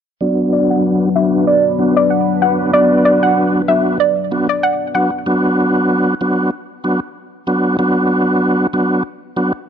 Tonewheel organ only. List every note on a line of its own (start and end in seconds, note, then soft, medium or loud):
0.21 1.09 F#3 medium
0.21 1.09 B3 medium
0.21 1.09 D4 medium
0.21 1.09 F#4 medium
1.15 1.45 F#3 medium
1.15 1.45 B3 medium
1.15 1.45 D4 medium
1.15 1.45 F#4 medium
1.79 1.95 F#3 medium
1.79 1.95 B3 medium
1.79 1.95 D4 medium
1.79 1.95 F#4 medium
2.42 2.71 F#3 medium
2.42 2.71 B3 medium
2.42 2.72 D4 medium
2.42 2.72 F#4 medium
2.73 3.62 F#3 medium
2.73 3.62 B3 medium
2.73 3.62 D4 medium
2.73 3.62 F#4 loud
3.68 3.98 F#3 medium
3.68 3.98 B3 medium
3.68 3.98 D4 medium
3.68 3.98 F#4 medium
4.31 4.47 F#3 medium
4.31 4.47 B3 medium
4.31 4.48 D4 medium
4.31 4.48 F#4 medium
4.95 5.10 F#3 medium
4.95 5.11 B3 medium
4.95 5.11 D4 medium
4.95 5.11 F#4 medium
5.26 6.14 F#3 medium
5.26 6.14 B3 medium
5.26 6.15 D4 medium
5.26 6.15 F#4 loud
6.21 6.50 F#3 medium
6.21 6.50 B3 medium
6.21 6.51 D4 medium
6.21 6.51 F#4 medium
6.84 7.00 F#3 medium
6.84 7.00 B3 medium
6.84 7.00 D4 medium
6.84 7.00 F#4 medium
7.47 7.77 F#3 medium
7.47 7.77 B3 medium
7.47 7.77 D4 medium
7.47 7.77 F#4 medium
7.79 8.67 F#3 medium
7.79 8.67 B3 medium
7.79 8.67 D4 medium
7.79 8.67 F#4 loud
8.73 9.03 F#3 medium
8.73 9.03 B3 medium
8.73 9.03 D4 medium
8.73 9.03 F#4 medium
9.36 9.52 F#3 medium
9.36 9.53 B3 medium
9.36 9.53 D4 medium
9.36 9.53 F#4 medium